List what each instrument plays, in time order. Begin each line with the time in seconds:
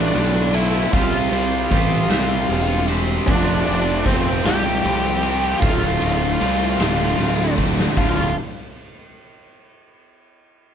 Already playing: picked electric bass A1, distorted electric guitar D2 A2, overdriven electric guitar A2 D3 A3 D4 F4, lead electric guitar D4
0.14 picked electric bass B1, overdriven electric guitar A2 D3 A3 F4, ride
0.53 overdriven electric guitar D3 A3 F4, lead electric guitar E4, ride
0.93 picked electric bass C2, overdriven electric guitar C3 G3 C4 G4 C5, lead electric guitar F4, kick, ride
1.31 picked electric bass C2, overdriven electric guitar G4 C5, ride
1.36 overdriven electric guitar C4
1.71 picked electric bass A1, overdriven electric guitar G3 C4 G4, kick, ride
1.75 overdriven electric guitar C5
2.09 picked electric bass C2, distorted electric guitar C3 G3, overdriven electric guitar C4 G4 C5, snare, ride
2.49 picked electric bass E1, overdriven electric guitar G3 C4 G4 C5, ride
2.88 overdriven electric guitar C4 G4 C5, ride
3.27 picked electric bass F1, overdriven electric guitar F2 C3 F3 A3 C4, lead electric guitar D4, kick, ride
3.31 overdriven electric guitar F4
3.66 picked electric bass F1, overdriven electric guitar A3 C4 F4, lead electric guitar D4, ride
3.70 overdriven electric guitar F3
4.06 picked electric bass F1, overdriven electric guitar F3 A3 C4 F4, lead electric guitar C4, kick, ride
4.44 picked electric bass C2, distorted electric guitar F2 C3, overdriven electric guitar F3 A3 C4 F4, lead electric guitar G4, snare, ride
4.83 picked electric bass C2, overdriven electric guitar F3 A3 C4 F4, ride
5.23 overdriven electric guitar F3 A3 C4 F4, ride
5.60 picked electric bass D1, overdriven electric guitar D2 A2 D3 A3 C4 F4, lead electric guitar F4, kick, ride
5.99 picked electric bass D1, overdriven electric guitar D3 A3 C4 F4, ride
6.39 picked electric bass C2, overdriven electric guitar D3 A3 C4 F4, ride
6.78 picked electric bass D1, distorted electric guitar D2 A2, overdriven electric guitar D3 A3 C4 F4, snare, ride
7.16 picked electric bass D1, overdriven electric guitar D3 A3 C4 F4, ride
7.56 overdriven electric guitar D3 A3 C4 F4, kick
7.79 snare
7.96 picked electric bass D1, overdriven electric guitar D2 A2 D3, lead electric guitar F4, kick, open hi-hat